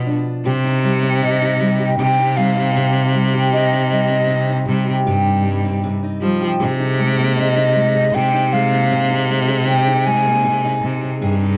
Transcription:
Already playing: cello B2, steel-string acoustic guitar B2 F3 F4 G4
0.07 steel-string acoustic guitar D4
0.45 steel-string acoustic guitar C3 G4, cello C3
0.64 steel-string acoustic guitar D#4
0.84 steel-string acoustic guitar G3
1.03 steel-string acoustic guitar C4
1.22 steel-string acoustic guitar C3, flute D#5
1.41 steel-string acoustic guitar D#4
1.60 steel-string acoustic guitar G3
1.80 steel-string acoustic guitar G4
1.99 steel-string acoustic guitar C3 G4, cello C3, flute G5
2.18 steel-string acoustic guitar D#4
2.37 steel-string acoustic guitar G3, flute F5
2.57 steel-string acoustic guitar C4
2.76 steel-string acoustic guitar C3
2.95 steel-string acoustic guitar D#4
3.14 steel-string acoustic guitar G3
3.34 steel-string acoustic guitar G4
3.52 steel-string acoustic guitar C3 G4, flute D#5
3.72 steel-string acoustic guitar D#4
3.91 steel-string acoustic guitar G3, flute D#5
4.10 steel-string acoustic guitar C4
4.30 steel-string acoustic guitar C3
4.49 steel-string acoustic guitar D#4
4.68 cello C3, steel-string acoustic guitar G3
4.87 steel-string acoustic guitar G4
5.07 cello G2, steel-string acoustic guitar C3 G4
5.26 steel-string acoustic guitar D#4
5.45 steel-string acoustic guitar G3
5.64 steel-string acoustic guitar C4
5.84 steel-string acoustic guitar C3
6.03 steel-string acoustic guitar D#4
6.22 cello F3, steel-string acoustic guitar G3
6.41 steel-string acoustic guitar G4
6.60 steel-string acoustic guitar C3 G#4, cello C3
6.80 steel-string acoustic guitar D#4
6.99 steel-string acoustic guitar G#3
7.18 steel-string acoustic guitar A#3
7.37 steel-string acoustic guitar C3, flute D#5
7.56 steel-string acoustic guitar D#4
7.75 steel-string acoustic guitar G#3
7.95 steel-string acoustic guitar G#4
8.14 steel-string acoustic guitar C3 G#4, cello C3, flute G5
8.33 steel-string acoustic guitar D#4
8.52 steel-string acoustic guitar G#3, flute F5
8.72 steel-string acoustic guitar A#3
8.91 steel-string acoustic guitar C3
9.10 steel-string acoustic guitar D#4
9.29 steel-string acoustic guitar G#3
9.48 steel-string acoustic guitar G#4
9.68 steel-string acoustic guitar C3 G#4, flute G5
9.87 steel-string acoustic guitar D#4
10.06 steel-string acoustic guitar G#3, flute G#5
10.26 steel-string acoustic guitar A#3
10.44 steel-string acoustic guitar C3
10.64 steel-string acoustic guitar D#4
10.83 cello C3
11.03 steel-string acoustic guitar G#4
11.22 cello G2, steel-string acoustic guitar C3 G#4
11.41 steel-string acoustic guitar D#4

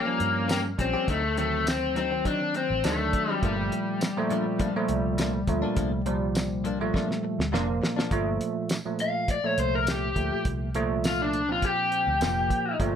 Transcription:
Already playing: overdriven electric guitar A#3
0.05 tine electric piano F3 G3 C#4, muted clean electric guitar stroke
0.20 fingered electric bass G2, muted clean electric guitar stroke, closed hi-hat
0.48 clean electric guitar D#3 A#3 C#4 G4, overdriven electric guitar A#3, snare, closed hi-hat, tambourine
0.65 muted clean electric guitar stroke
0.78 fingered electric bass A#1, tine electric piano F3 G3 C#4, overdriven electric guitar C4, muted clean electric guitar stroke, kick, closed hi-hat
0.94 clean electric guitar A#3 C#4 G4, muted fingered electric bass stroke
1.08 fingered electric bass D2, clean electric guitar D3 F#3 C4 D#4, overdriven electric guitar A3, kick, closed hi-hat
1.23 muted clean electric guitar stroke
1.37 tine electric piano D#3 F#3 C4, overdriven electric guitar A3, muted clean electric guitar stroke, closed hi-hat
1.66 overdriven electric guitar C4, muted clean electric guitar stroke, snare, closed hi-hat, tambourine
1.96 clean electric guitar D3 F#3 C4 D#4, overdriven electric guitar C4, closed hi-hat
2.11 tine electric piano D#3 F#3 C4, muted clean electric guitar stroke
2.25 clean electric guitar D3 F#3 C4 D#4, overdriven electric guitar D4, kick, closed hi-hat
2.41 muted clean electric guitar stroke
2.54 overdriven electric guitar C4, muted clean electric guitar stroke, closed hi-hat
2.70 fingered electric bass A1
2.84 fingered electric bass D2, clean electric guitar D3 F#3 C4 D#4, tine electric piano D#3 F#3 D4, overdriven electric guitar A3, snare, closed hi-hat, tambourine
3.00 muted clean electric guitar stroke
3.13 muted clean electric guitar stroke, kick, closed hi-hat
3.29 clean electric guitar F#3 C4 D#4, overdriven electric guitar G3
3.42 fingered electric bass G1, clean electric guitar G2 F3 A#3 D4, tine electric piano A#2 F3 A3, overdriven electric guitar G3, kick, closed hi-hat
3.58 muted clean electric guitar stroke
3.71 muted clean electric guitar stroke, closed hi-hat
4.01 muted clean electric guitar stroke, snare, closed hi-hat, tambourine
4.17 tine electric piano A#2 F3 A3
4.30 clean electric guitar G2 F3 A#3 D4, closed hi-hat
4.46 muted clean electric guitar stroke
4.59 clean electric guitar G2 F3 A#3 D4, kick, closed hi-hat
4.75 tine electric piano A#2 F3 A3, muted clean electric guitar stroke
4.88 fingered electric bass C2, muted clean electric guitar stroke, closed hi-hat
5.18 clean electric guitar G2 F3 A#3 D4, snare, closed hi-hat, tambourine
5.34 muted clean electric guitar stroke
5.47 fingered electric bass D2, tine electric piano A#2 F3 A3, muted clean electric guitar stroke, kick, closed hi-hat
5.62 clean electric guitar F3 A#3 D4, muted fingered electric bass stroke
5.76 fingered electric bass C2, clean electric guitar G2 F3 A#3 D4, kick, closed hi-hat
5.92 muted clean electric guitar stroke
6.06 tine electric piano A#2 F3 G3, muted clean electric guitar stroke, closed hi-hat
6.35 muted clean electric guitar stroke, snare, closed hi-hat, tambourine
6.64 clean electric guitar G2 F3 A#3 D4, closed hi-hat
6.80 tine electric piano A#2 F3 A3, muted clean electric guitar stroke
6.94 clean electric guitar G2 F3 A#3 D4, kick, snare
7.09 muted clean electric guitar stroke, snare
7.23 muted clean electric guitar stroke
7.39 fingered electric bass D2, snare
7.52 fingered electric bass F1, clean electric guitar G2 F3 A#3 D4, tine electric piano A#2 F3 A#3, snare
7.68 muted clean electric guitar stroke
7.82 muted clean electric guitar stroke, snare
7.96 clean electric guitar F3 A#3 D4, snare
8.11 fingered electric bass G1, tine electric piano A#2 F3 A3, kick, closed hi-hat
8.41 closed hi-hat
8.69 snare, closed hi-hat, tambourine
8.85 tine electric piano A#2 F3 A3
8.99 overdriven electric guitar F5, closed hi-hat
9.28 overdriven electric guitar D5, kick, closed hi-hat
9.43 tine electric piano A#2 F3 A3, overdriven electric guitar C#5
9.58 fingered electric bass C2, overdriven electric guitar C5, closed hi-hat
9.75 overdriven electric guitar A#4
9.87 overdriven electric guitar G4, snare, closed hi-hat, tambourine
10.16 fingered electric bass D2, tine electric piano A#2 F3 A3, kick, closed hi-hat
10.32 muted fingered electric bass stroke
10.45 fingered electric bass C2, kick, closed hi-hat
10.75 tine electric piano A#2 F3 A3, closed hi-hat
11.04 overdriven electric guitar F4, snare, closed hi-hat, tambourine
11.22 overdriven electric guitar D4
11.33 closed hi-hat
11.48 tine electric piano A#2 F3 C4, overdriven electric guitar F4
11.62 overdriven electric guitar G4, kick, closed hi-hat
11.92 closed hi-hat
12.07 fingered electric bass D2
12.21 fingered electric bass F1, tine electric piano A#2 F3 A#3, snare, closed hi-hat, tambourine
12.50 kick, closed hi-hat
12.80 fingered electric bass G1, tine electric piano A#2 F3 A3, kick, closed hi-hat

